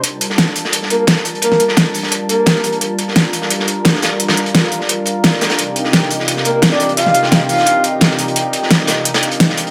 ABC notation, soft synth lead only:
X:1
M:4/4
L:1/16
Q:1/4=173
K:Gm
V:1 name="Soft synth lead"
z8 z2 B B z4 | B2 z8 B6 | z16 | z16 |
z8 z2 B B z d2 z | f4 z2 f4 z6 | z16 |]